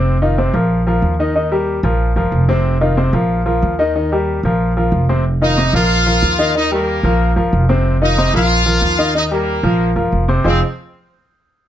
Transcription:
<<
  \new Staff \with { instrumentName = "Trumpet section" } { \time 4/4 \key bes \dorian \tempo 4 = 185 r1 | r1 | r1 | r1 |
r8 <ees' ees''>4 <f' f''>2~ <f' f''>8 | <ees' ees''>8 <bes bes'>2 r4. | r8 <ees' ees''>4 <f' f''>2~ <f' f''>8 | <ees' ees''>8 <bes bes'>2 r4. |
c'8 r2. r8 | }
  \new Staff \with { instrumentName = "Grand piano" } { \time 4/4 \key bes \dorian <c c' c''>8 <ees ees' f'>8 <c c' c''>8 <f f' bes'>4 <f f' bes'>4 <ees ees' ees''>8 | <ees ees' ees''>8 <g g' bes'>4 <f f' bes'>4 <f f' bes'>4 <c c' c''>8~ | <c c' c''>8 <ees ees' f'>8 <c c' c''>8 <f f' bes'>4 <f f' bes'>4 <ees ees' ees''>8 | <ees ees' ees''>8 <g g' bes'>4 <f f' bes'>4 <f f' bes'>4 <c c' c''>8 |
r8 <ees ees' f'>8 <c c' c''>8 <f f' bes'>4 <f f' bes'>4 <ees ees' ees''>8 | <ees ees' ees''>8 <g g' bes'>4 <f f' bes'>4 <f f' bes'>4 <c c' c''>8~ | <c c' c''>8 <ees ees' f'>8 <c c' c''>8 <f f' bes'>4 <f f' bes'>4 <ees ees' ees''>8 | <ees ees' ees''>8 <g g' bes'>4 <f f' bes'>4 <f f' bes'>4 <c c' c''>8 |
<f c' ees' f' aes' c''>8 r2. r8 | }
  \new Staff \with { instrumentName = "Upright bass" } { \clef bass \time 4/4 \key bes \dorian f,,4. bes,,4. ees,4~ | ees,4. bes,,4 g,,8 f,,4~ | f,,4. bes,,4. ees,4~ | ees,4. bes,,4. f,,4~ |
f,,4. bes,,4. ees,4~ | ees,4. bes,,4 g,,8 f,,4~ | f,,4. bes,,4. ees,4~ | ees,4. bes,,4 g,,8 f,,4 |
f,,8 r2. r8 | }
>>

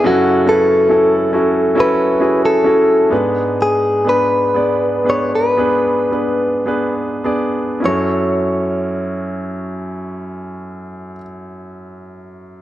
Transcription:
<<
  \new Staff \with { instrumentName = "Clean electric guitar" } { \time 4/4 \key fis \minor \tempo 4 = 57 fis'8 a'4. b'8. a'8. r8 | gis'8 b'4 cis''16 b'4. r8. | cis''1 | }
  \new Staff \with { instrumentName = "Grand piano" } { \time 4/4 \key fis \minor <cis' e' fis' a'>8 <cis' e' fis' b'>8 <cis' e' fis' a'>8 <cis' e' fis' a'>8 <cis' e' fis' a'>8 <cis' e' fis' gis'>8 <cis' e' fis' a'>8 <b d' gis' b'>8~ | <b d' gis' b'>8 <b d' gis' b'>8 <b d' gis' d''>8 <b d' gis' b'>8 <b d' gis' b'>8 <b d' gis' b'>8 <b d' gis' b'>8 <b d' gis' d''>8 | <cis' e' fis' a'>1 | }
  \new Staff \with { instrumentName = "Grand piano" } { \clef bass \time 4/4 \key fis \minor <fis, cis>2.~ <fis, cis>8 <gis, gis>8~ | <gis, gis>2.~ <gis, gis>8 r8 | fis,1 | }
>>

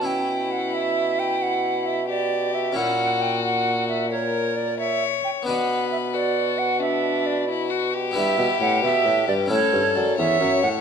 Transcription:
<<
  \new Staff \with { instrumentName = "Flute" } { \time 12/8 \key b \minor \tempo 4. = 89 g''4 fis''8 e''4 g''8 fis''4 e''8 d''4 e''8 | fis''4 g''8 fis''4 e''8 cis''4 d''8 e''4 g''8 | fis''4 e''8 d''4 fis''8 e''4 d''8 r4. | \key e \dorian e''4 fis''8 e''4 d''8 cis''4 d''8 e''4 fis''8 | }
  \new Staff \with { instrumentName = "Violin" } { \time 12/8 \key b \minor e'1~ e'8 g'4. | fis'2. ais'4. cis''4. | b'4. fis'4. d'4. e'8 fis'8 g'8~ | \key e \dorian g'2. a'4. cis''4. | }
  \new Staff \with { instrumentName = "Harpsichord" } { \time 12/8 \key b \minor <cis' e'>1. | <cis' e' fis'>1. | <b d' b'>1. | \key e \dorian <b e' b'>2. <cis' e' a'>2. | }
  \new Staff \with { instrumentName = "Harpsichord" } { \clef bass \time 12/8 \key b \minor b,1. | ais,1~ ais,4. r8 | b,1. | \key e \dorian g,8 b,8 a,8 b,8 a,8 g,8 a,8 g,8 fis,8 e,8 fis,8 a,8 | }
  \new Staff \with { instrumentName = "Bassoon" } { \clef bass \time 12/8 \key b \minor b,1. | ais,1~ ais,4. r8 | b,1. | \key e \dorian g,8 b,8 a,8 b,8 a,8 g,8 a,8 g,8 fis,8 e,8 fis,8 a,8 | }
>>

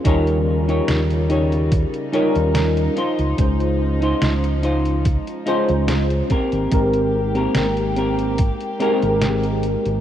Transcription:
<<
  \new Staff \with { instrumentName = "Clean electric guitar" } { \time 4/4 \key aes \major \tempo 4 = 72 <ees' g' des''>8 r16 <ees' g' des''>16 r8 <ees' g' des''>8 r8 <ees' g' des''>16 r8. <ees' f' c''>8~ | <ees' f' c''>8 r16 <ees' f' c''>16 r8 <ees' f' c''>8 r8 <ees' f' c''>16 r8. <c' g' bes'>8~ | <c' g' bes'>8 r16 <c' g' bes'>16 r8 <c' g' bes'>8 r8 <c' g' bes'>16 r4 r16 | }
  \new Staff \with { instrumentName = "Tine electric piano" } { \time 4/4 \key aes \major <g des' ees' f' bes'>2~ <g des' ees' f' bes'>8 <g des' ees' f' bes'>4 r8 | <aes des' ees' f' c''>2~ <aes des' ees' f' c''>8 <aes des' ees' f' c''>4 r8 | <aes c' ees' g' bes'>2~ <aes c' ees' g' bes'>8 <aes c' ees' g' bes'>4. | }
  \new Staff \with { instrumentName = "String section" } { \clef bass \time 4/4 \key aes \major << { ees'1~ | ees'2.~ ees'8 g'8~ | g'1 | } \\ { <des g>2.~ <des g>8 f8~ | f2.~ f8 bes8~ | bes1 | } >> }
  \new Staff \with { instrumentName = "Fingered electric bass" } { \clef bass \time 4/4 \key aes \major ees,8. r16 ees,4 r8. ees,8 r8 des,16 | des,8. r16 des,4 r8. des,8 r8 aes,,16 | aes,,8. r16 aes,,4 r8. aes,,8. r16 aes,,16 | }
  \new DrumStaff \with { instrumentName = "Drums" } \drummode { \time 4/4 <hh bd>16 hh8 hh16 <hh sn>16 hh16 hh16 hh16 <hh bd>16 hh16 hh16 hh16 <hh sn>16 hh16 hh16 hh16 | <hh bd>16 hh8 hh16 <hh sn>16 hh16 hh16 hh16 <hh bd>16 hh16 hh16 hh16 <hh sn>16 hh16 <hh bd>16 hh16 | <hh bd>16 hh8 hh16 <hh sn>16 hh16 hh16 hh16 <hh bd>16 hh16 hh16 hh16 <hh sn>16 hh16 hh16 hh16 | }
>>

